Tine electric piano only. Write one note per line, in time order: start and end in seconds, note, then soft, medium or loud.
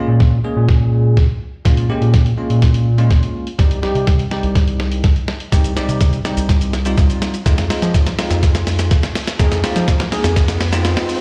0.00 0.35 G#3 medium
0.00 0.35 A#3 medium
0.00 0.35 C#4 medium
0.00 0.35 F4 medium
0.44 1.22 G#3 medium
0.44 1.22 A#3 medium
0.44 1.22 C#4 medium
0.44 1.23 G#4 medium
1.65 1.85 G#3 medium
1.65 1.85 A#3 medium
1.65 1.85 C#4 medium
1.65 1.85 F4 loud
1.89 2.28 G#3 medium
1.89 2.29 A#3 medium
1.89 2.29 C#4 medium
1.89 2.29 G4 medium
2.38 2.87 G#3 medium
2.38 2.87 A#3 medium
2.38 2.87 C#4 medium
2.38 2.87 F4 medium
2.98 3.47 G#3 medium
2.98 3.47 A#3 medium
2.98 3.47 C#4 medium
2.98 3.47 F4 medium
3.58 3.78 G3 medium
3.58 3.78 C4 medium
3.58 3.78 D#4 medium
3.58 3.78 G4 medium
3.83 4.22 G3 medium
3.83 4.22 C4 medium
3.83 4.22 D#4 medium
3.83 4.22 G4 medium
4.31 5.09 G3 medium
4.31 5.09 C4 medium
4.31 5.09 D#4 medium
4.31 5.10 G4 medium
5.52 5.72 G3 medium
5.52 5.72 C4 medium
5.52 5.72 D#4 medium
5.52 5.72 G4 loud
5.76 6.16 G3 medium
5.76 6.16 C4 medium
5.76 6.16 D#4 medium
5.76 6.16 G4 loud
6.25 6.74 G3 medium
6.25 6.74 C4 medium
6.25 6.74 D#4 medium
6.25 6.74 G4 medium
6.85 7.34 G3 medium
6.85 7.34 C4 medium
6.85 7.34 D#4 medium
6.85 7.35 F4 loud
7.46 7.65 G#3 medium
7.46 7.66 C4 medium
7.46 7.66 D#4 medium
7.46 7.66 F4 loud
7.70 8.09 G#3 medium
7.70 8.09 C4 medium
7.70 8.09 D#4 medium
7.70 8.09 F4 medium
8.19 8.97 G#3 medium
8.19 8.97 C4 medium
8.19 8.97 D#4 medium
8.19 8.97 F4 medium
9.39 9.59 G#3 medium
9.39 9.59 C4 medium
9.39 9.59 D#4 medium
9.39 9.59 G#4 loud
9.63 10.03 G#3 medium
9.63 10.03 C4 medium
9.63 10.03 D#4 medium
9.63 10.03 F4 loud
10.12 10.61 G#3 medium
10.12 10.61 C4 medium
10.12 10.61 D#4 medium
10.12 10.61 G#4 loud
10.72 11.21 G#3 medium
10.72 11.21 C4 medium
10.72 11.21 D#4 medium
10.72 11.21 F4 loud